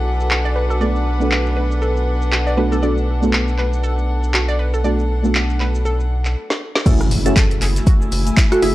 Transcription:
Already playing: analog synth bass B1, string section D4 E4 A4 B4 F#5, analog synth pad F#4 B4 G#5 D6
0.20 shaker
0.31 synth arpeggio sound F#4, clap, shaker
0.45 synth arpeggio sound D5, shaker
0.56 synth arpeggio sound B4
0.70 synth arpeggio sound A4, shaker
0.80 synth stab A3 B3 D4 F#4 A4, synth arpeggio sound D5, shaker
0.96 shaker
1.20 synth stab A3 B3 D4 F#4 A4, shaker
1.31 clap, shaker
1.46 shaker
1.57 synth arpeggio sound B4
1.71 shaker
1.82 synth arpeggio sound A4, shaker
1.97 shaker
2.22 shaker
2.32 synth arpeggio sound F#4, clap, shaker
2.47 synth arpeggio sound D5, shaker
2.57 synth stab A3 B3 D4 F#4 A4, synth arpeggio sound B4
2.71 synth stab A3 B3 D4 F#4 A4, synth arpeggio sound A4, shaker
2.82 synth stab A3 B3 D4 F#4 A4, synth arpeggio sound D5, shaker
2.98 shaker
3.22 synth stab A3 B3 D4 F#4 A4, shaker
3.33 clap, shaker
3.48 shaker
3.58 synth arpeggio sound B4, clap
3.73 shaker
3.83 synth arpeggio sound A4, shaker
3.98 shaker
4.23 shaker
4.34 synth arpeggio sound F#4, clap, shaker
4.49 synth arpeggio sound D5, shaker
4.59 synth arpeggio sound B4
4.74 synth arpeggio sound A4, shaker
4.84 synth stab A3 B3 D4 F#4 A4, synth arpeggio sound D5, shaker
4.99 shaker
5.23 synth stab A3 B3 D4 F#4 A4, shaker
5.35 clap, shaker
5.50 shaker
5.60 synth arpeggio sound B4, clap
5.75 shaker
5.85 synth arpeggio sound A4, shaker
6.00 shaker
6.25 clap, shaker
6.50 snare
6.75 snare
6.85 synth stab A3 C#4 E4 F#4 G#4, analog synth pad A3 F#4 G#5 E6, string section E4, synth arpeggio sound A4, kick, closed hi-hat, crash, impact, shaker
7.01 cross-stick, shaker
7.11 analog synth bass F#1, open hi-hat, shaker
7.25 synth stab A3 C#4 E4 F#4 G#4, synth pluck A4, closed hi-hat, shaker
7.36 synth pluck A4, kick, snare, clap, closed hi-hat, shaker
7.51 closed hi-hat, shaker
7.61 analog synth bass F#1, synth arpeggio sound G#4, clap, open hi-hat, shaker
7.76 snare, closed hi-hat, shaker
7.87 synth arpeggio sound F#4, kick, closed hi-hat, shaker
8.02 shaker
8.12 analog synth bass F#1, open hi-hat, shaker
8.22 string section G#5
8.27 closed hi-hat, shaker
8.37 synth arpeggio sound E4, kick, snare, clap, closed hi-hat, shaker
8.52 synth pluck F#4, synth arpeggio sound A4, cross-stick, closed hi-hat, shaker
8.62 analog synth bass F#1, synth pluck E4, synth arpeggio sound G#4, open hi-hat, shaker

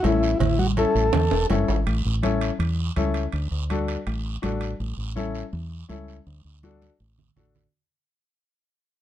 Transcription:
0.03 fingered electric bass A1, upright piano C#4 E4 A4, transistor combo organ E4, cowbell, high conga, low timbale, short guiro
0.23 short guiro
0.39 fingered electric bass A1, transistor combo organ E4, cowbell, low conga, long guiro
0.59 transistor combo organ F#4, high conga
0.77 upright piano C#4 E4 A4, transistor combo organ A4, cowbell, high conga, short guiro
0.95 fingered electric bass A1, short guiro
1.13 fingered electric bass E2, cowbell, low conga, high timbale, long guiro
1.31 fingered electric bass E1, high timbale
1.50 fingered electric bass F#1, upright piano C#4 E4 A4, cowbell, high conga, low timbale, short guiro
1.68 fingered electric bass G#1, low timbale, short guiro
1.87 fingered electric bass A1, high timbale, long guiro
2.05 fingered electric bass A1
2.23 upright piano C#4 E4 A4, high conga, high timbale, short guiro
2.41 high timbale, short guiro
2.59 fingered electric bass E2, high timbale, long guiro
2.96 fingered electric bass C#2, upright piano C#4 E4 A4, high conga, high timbale, short guiro
3.14 high timbale, short guiro
3.32 fingered electric bass D2, high timbale, long guiro
3.51 fingered electric bass D2
3.70 upright piano D4 F#4 A4, high conga, high timbale, short guiro
3.88 high timbale, short guiro
4.07 fingered electric bass A1, high timbale, long guiro
4.42 fingered electric bass A1, upright piano D4 F#4 A4, high conga, high timbale, low timbale, short guiro
4.61 high timbale, short guiro
4.80 fingered electric bass A1, long guiro
4.97 fingered electric bass A1
5.16 upright piano C#4 E4 A4, high conga, short guiro
5.35 short guiro
5.53 fingered electric bass E2, long guiro
5.89 fingered electric bass C#2, upright piano C#4 E4 A4, high conga, short guiro
6.08 short guiro
6.26 fingered electric bass D2, long guiro
6.45 fingered electric bass D2
6.63 upright piano D4 F#4 A4, high conga, short guiro
6.82 high conga, short guiro
7.00 fingered electric bass A1, long guiro
7.19 low conga
7.36 fingered electric bass A1, upright piano D4 F#4 A4, low conga, short guiro
7.55 low conga, short guiro

